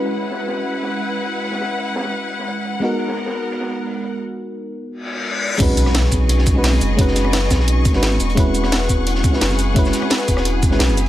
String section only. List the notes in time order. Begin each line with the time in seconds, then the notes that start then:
Already playing: G#3 E4 B4 F#5
2.82 B3 A#4
5.60 G#4 D#5 C#6
8.37 G#4 F#5
10.98 E5